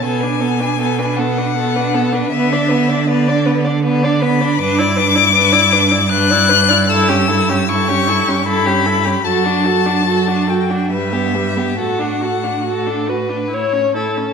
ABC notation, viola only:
X:1
M:3/4
L:1/16
Q:1/4=77
K:Bdor
V:1 name="Viola"
B, D B, D B, D B, D B, D B, D | B, D B, D B, D B, D B, D B, D | [K:D] D E D E D E D E D E D E | E C E C E C E C E C E C |
F D F D F D F D G, B, G, B, | F D F D F D F D E C E C |]